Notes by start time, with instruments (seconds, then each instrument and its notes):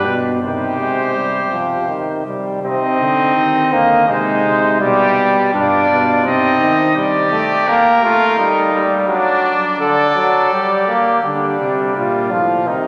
Already playing: trombone G3, trumpet D4 B4
0.05 bass trombone B2
0.41 bass trombone C3, trombone D#3, trumpet G4 C5
0.81 trombone G#3
1.16 trombone G3
1.52 trombone F3
1.88 trombone D#3
2.26 trombone G3
2.63 bass trombone C3, trombone C4, trumpet D#4 D#5
3.00 bass trombone D3
3.36 bass trombone D#3
3.73 bass trombone D3, trombone A#3
4.08 bass trombone C3, trombone G#3, trumpet D#4 C5
4.46 bass trombone C3
4.81 bass trombone B2, trombone G3, trumpet G4 D5
5.54 bass trombone G2, trombone D4, trumpet F4 D5
5.90 bass trombone B2
6.24 bass trombone C3, trombone C4, trumpet D#4 D#5
6.61 bass trombone D#3
6.96 trombone G3, trumpet G4 D5
7.32 trombone A3
7.68 trombone A#3, trumpet A#4
8.03 trombone A3, trumpet F4
8.37 trombone G3, trumpet D#4
8.73 trombone G3
9.08 trombone F#3, trumpet D4 D5
9.80 trombone D3, trumpet A4 D5
10.15 trombone F#3
10.53 trombone G3, trumpet G4
10.88 trombone A#3
11.22 bass trombone D3, trombone G3, trumpet D4
11.61 bass trombone C3
11.97 bass trombone A#2, trumpet F4
12.31 bass trombone A2, trombone F3
12.67 bass trombone C3, trombone D#3, trumpet D#4